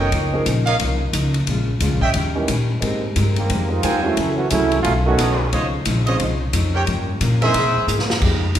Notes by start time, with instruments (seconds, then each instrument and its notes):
Already playing: upright bass F#1
0.00 trumpet section A#4 C#5 D#5 G5
0.12 upright bass C#2, hollow-body jazz guitar C#3 F3 A#3 D#4, kick, ride
0.33 grand piano F3 A#3 C#4 D#4 G#4
0.45 upright bass A#1, hollow-body jazz guitar C#3 F3 A#3 D#4, kick, hi-hat pedal, ride
0.66 trumpet section A#4 C#5 D#5 F5, ride
0.78 upright bass C2, hollow-body jazz guitar C#3 F3 A#3 D#4, kick, ride
1.13 upright bass C#2, hollow-body jazz guitar C#3 F3 A#3 D#4, kick, hi-hat pedal, ride
1.34 ride
1.47 upright bass A#1, hollow-body jazz guitar A#2 G#3 C#4 F4, kick, ride
1.80 upright bass C#2, hollow-body jazz guitar A#2 G#3 C#4 F4, kick, hi-hat pedal, ride
1.91 upright bass A#1
2.01 upright bass G#1, trumpet section C#5 D#5 E5 G5, kick
2.14 upright bass D#2, hollow-body jazz guitar D#3 G3 C#4, kick, ride
2.18 hollow-body jazz guitar E4
2.35 grand piano E3 A#3 C#4 D#4 G4
2.48 upright bass A#2, hollow-body jazz guitar D#3 G3 C#4 E4, kick, hi-hat pedal, ride
2.81 upright bass G#2, grand piano G#3 A#3 C4 D#4 G4, hollow-body jazz guitar G#3, kick, ride
2.85 hollow-body jazz guitar C4 G4 A#4
3.16 upright bass G2, hollow-body jazz guitar G#3 C4 G4 A#4, kick, hi-hat pedal, ride
3.36 trombone section D#3 G3 A#3 C4, ride
3.50 upright bass F2, hollow-body jazz guitar G#3 C4 G4 A#4, kick, ride
3.70 trombone section A#3 C4 D#4 F4
3.83 upright bass D#2, hollow-body jazz guitar G#3 C4 G4 A#4, trumpet section A#4 C5 G5 G#5, kick, hi-hat pedal, ride
4.02 trombone section F#3 A3 C#4 E4, grand piano F#3 A3 C#4 E4 G#4
4.17 upright bass C#2, hollow-body jazz guitar F#2 E3 A3, kick, ride
4.22 hollow-body jazz guitar C#4
4.36 trombone section E3 A3 C#4 F#4
4.50 upright bass C2, hollow-body jazz guitar F#2 E3, trombone section F#3 A3 C#4 E4, grand piano F#3 A3 C#4 E4 G#4, kick, hi-hat pedal, ride
4.54 hollow-body jazz guitar A3 C#4
4.72 ride
4.83 upright bass B1, hollow-body jazz guitar B2, trombone section F#3 A3 C#4 F4, kick, ride
4.87 hollow-body jazz guitar D#3 A3 C#4
5.05 trombone section D#3 A3 C#4 F#4, grand piano F#3 B3 C#4 D#4 A4
5.19 upright bass B1, hollow-body jazz guitar B2 D#3 A3 C#4, trumpet section A4 B4 C#5 D#5, kick, hi-hat pedal, ride
5.52 upright bass C#2, hollow-body jazz guitar C#3 F3 C4 D#4, trumpet section F4 C5 C#5 D#5, kick, ride
5.85 upright bass A#1, hollow-body jazz guitar C#3 F3 C4 D#4, kick, hi-hat pedal, ride
6.06 grand piano F3 C4 C#4 D#4 G#4, trumpet section F4 C5 C#5 D#5, ride
6.19 upright bass C2, hollow-body jazz guitar C#3 F3 C4 D#4, kick, ride
6.53 upright bass F2, hollow-body jazz guitar C#3 F3 C4 D#4, kick, hi-hat pedal, ride
6.74 trumpet section G4 A#4 C#5 G5
6.86 hollow-body jazz guitar G2 F3 A#3 C#4, upright bass G2, kick, ride
7.21 hollow-body jazz guitar G2 F3 A#3 C#4, upright bass A#2, kick, hi-hat pedal, ride
7.41 grand piano E3 A#3 C4 D#4 G#4, trumpet section G#4 A#4 C5 E5, ride
7.54 hollow-body jazz guitar C3 A#3 E4 G#4, kick, ride
7.66 upright bass A#2
7.76 upright bass G#2
7.87 upright bass G#2, hollow-body jazz guitar C3 A#3 E4 G#4, hi-hat pedal
7.99 snare
8.10 snare
8.21 upright bass F2, hollow-body jazz guitar F3 G#3 D#4 G4, saxophone section F3 G#3 D#4 G4, kick, crash
8.55 upright bass A#1, hollow-body jazz guitar F3, kick, hi-hat pedal, ride